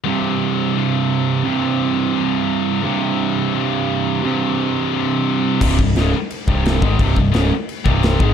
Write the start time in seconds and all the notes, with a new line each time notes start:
0.04 C2 G2 C3
0.75 C2 G2 C3
1.45 C2 G2 C3
2.15 C2 G2 C3
2.83 C2 G2 C3
3.53 C2 G2 C3
4.23 C2 G2 C3
4.92 C2 G2 C3
5.61 C1 C2 G2 C3, kick, crash
5.79 C1 C2 G2, kick
5.96 C#1 C#2 G#2 C#3, snare, crash
6.30 crash
6.47 C1 C2 G2 C3, kick
6.65 snare, crash
6.81 G#1 G#2 D#3 G#3, kick
6.99 C1 C2 G2 C3, kick, crash
7.16 C1 C2 G2, kick
7.32 C#1 C#2 G#2 C#3, snare, crash
7.69 crash
7.85 C1 C2 G2 C3, kick
8.03 snare, crash
8.19 G#1 G#2 D#3 G#3, kick